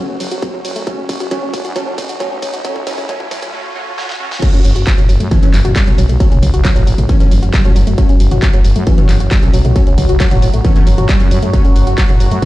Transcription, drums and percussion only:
0.20 open hi-hat, ride
0.31 closed hi-hat
0.42 kick, closed hi-hat, ride
0.54 mid tom
0.65 open hi-hat, ride
0.76 closed hi-hat
0.87 kick, closed hi-hat, ride
1.09 kick, open hi-hat, ride
1.20 closed hi-hat, mid tom
1.31 kick, closed hi-hat, ride
1.53 kick, open hi-hat, ride
1.65 closed hi-hat
1.76 kick, closed hi-hat, ride
1.87 mid tom
1.98 kick, open hi-hat, ride
2.09 closed hi-hat
2.20 kick, closed hi-hat, ride
2.42 kick, open hi-hat, ride
2.54 closed hi-hat, mid tom
2.65 kick, closed hi-hat, ride
2.76 kick
2.87 kick, open hi-hat, ride
2.98 kick, open hi-hat
3.09 kick, closed hi-hat, ride
3.20 kick, mid tom
3.31 kick, open hi-hat, ride
3.42 kick, closed hi-hat
3.98 snare
4.09 snare
4.31 snare
4.42 kick, closed hi-hat, ride, crash
4.54 closed hi-hat
4.65 open hi-hat
4.76 closed hi-hat
4.87 kick, clap, closed hi-hat, ride
4.98 closed hi-hat, mid tom
5.09 open hi-hat
5.20 closed hi-hat
5.31 kick, closed hi-hat, ride
5.43 closed hi-hat
5.54 clap, open hi-hat
5.65 closed hi-hat, mid tom
5.76 kick, clap, closed hi-hat, ride
5.87 closed hi-hat
5.98 open hi-hat
6.09 closed hi-hat
6.20 kick, closed hi-hat, ride
6.32 closed hi-hat, mid tom
6.42 kick, open hi-hat
6.54 closed hi-hat
6.65 kick, clap, closed hi-hat, ride
6.76 closed hi-hat
6.87 open hi-hat
6.98 closed hi-hat, mid tom
7.09 kick, closed hi-hat, ride
7.20 closed hi-hat
7.31 open hi-hat
7.43 closed hi-hat
7.54 kick, clap, closed hi-hat, ride
7.65 closed hi-hat, mid tom
7.76 open hi-hat
7.87 closed hi-hat
7.98 kick, closed hi-hat, ride
8.09 closed hi-hat
8.20 open hi-hat
8.31 closed hi-hat, mid tom
8.42 kick, clap, closed hi-hat, ride
8.54 closed hi-hat
8.64 open hi-hat
8.76 closed hi-hat
8.87 kick, closed hi-hat, ride
8.98 closed hi-hat, mid tom
9.09 clap, open hi-hat
9.20 closed hi-hat
9.31 kick, clap, closed hi-hat, ride
9.43 closed hi-hat
9.54 open hi-hat
9.65 closed hi-hat, mid tom
9.76 kick, closed hi-hat, ride
9.87 closed hi-hat
9.98 kick, open hi-hat
10.09 closed hi-hat
10.20 kick, clap, closed hi-hat, ride
10.31 closed hi-hat, mid tom
10.42 open hi-hat
10.54 closed hi-hat
10.65 kick, closed hi-hat, ride
10.76 closed hi-hat
10.87 open hi-hat
10.98 closed hi-hat, mid tom
11.09 kick, clap, closed hi-hat, ride
11.20 closed hi-hat
11.31 open hi-hat
11.42 closed hi-hat
11.53 kick, closed hi-hat, ride
11.65 closed hi-hat
11.76 open hi-hat
11.87 closed hi-hat
11.98 kick, clap, closed hi-hat, ride
12.09 closed hi-hat, mid tom
12.20 open hi-hat
12.31 closed hi-hat

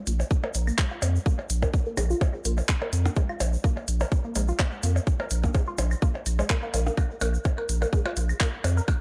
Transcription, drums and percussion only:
0.07 closed hi-hat, shaker
0.20 percussion blips, shaker
0.31 kick, shaker
0.44 percussion blips
0.54 closed hi-hat, shaker
0.67 claves, shaker
0.78 kick, clap, percussion blips, shaker
1.02 closed hi-hat, percussion blips, shaker
1.16 shaker
1.26 kick, shaker
1.39 percussion blips
1.50 closed hi-hat, shaker
1.62 kick, percussion blips, shaker
1.74 kick, shaker
1.97 closed hi-hat, percussion blips, claves, shaker
2.10 shaker
2.21 kick, percussion blips, shaker
2.45 closed hi-hat, shaker
2.57 percussion blips, shaker
2.69 kick, clap, shaker
2.82 percussion blips
2.93 closed hi-hat, shaker
3.05 percussion blips, shaker
3.16 kick, percussion blips, shaker
3.29 claves
3.40 closed hi-hat, percussion blips, shaker
3.53 shaker
3.64 kick, shaker
3.77 percussion blips
3.88 closed hi-hat, shaker
4.00 percussion blips, shaker
4.12 kick, shaker
4.35 closed hi-hat, percussion blips, shaker
4.48 shaker
4.58 kick, clap, percussion blips, claves, shaker
4.83 closed hi-hat, shaker
4.96 percussion blips, shaker
5.07 kick, shaker
5.20 percussion blips
5.30 closed hi-hat, shaker
5.44 kick, percussion blips, shaker
5.54 kick, percussion blips, shaker
5.78 closed hi-hat, percussion blips, shaker
5.91 claves, shaker
6.02 kick, shaker
6.15 percussion blips
6.26 closed hi-hat, shaker
6.39 percussion blips, shaker
6.50 kick, clap, shaker
6.74 closed hi-hat, percussion blips, shaker
6.86 percussion blips, shaker
6.97 kick, claves, percussion blips, shaker
7.21 closed hi-hat, percussion blips, shaker
7.34 shaker
7.45 kick, percussion blips, shaker
7.58 percussion blips
7.69 closed hi-hat, shaker
7.82 percussion blips, shaker
7.93 kick, shaker
8.06 percussion blips
8.17 closed hi-hat, shaker
8.29 claves, shaker
8.40 kick, clap, percussion blips, shaker
8.64 closed hi-hat, percussion blips, shaker
8.77 shaker
8.88 kick, percussion blips, shaker

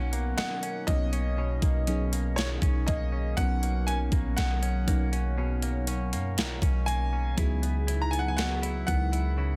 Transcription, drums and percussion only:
0.13 closed hi-hat
0.38 snare, closed hi-hat
0.63 closed hi-hat
0.88 kick, closed hi-hat
1.13 closed hi-hat
1.62 kick, closed hi-hat
1.87 closed hi-hat
2.13 closed hi-hat
2.38 snare, closed hi-hat
2.62 kick, closed hi-hat
2.88 kick, closed hi-hat
3.37 kick, closed hi-hat
3.63 closed hi-hat
3.88 closed hi-hat
4.12 kick, closed hi-hat
4.38 snare, closed hi-hat
4.63 closed hi-hat
4.88 kick, closed hi-hat
5.13 closed hi-hat
5.62 closed hi-hat
5.87 closed hi-hat
6.13 closed hi-hat
6.38 snare, closed hi-hat
6.62 kick, closed hi-hat
6.88 closed hi-hat
7.38 kick, closed hi-hat
7.63 closed hi-hat
7.88 closed hi-hat
8.13 closed hi-hat
8.38 snare, closed hi-hat
8.63 closed hi-hat
8.88 kick, closed hi-hat
9.13 closed hi-hat

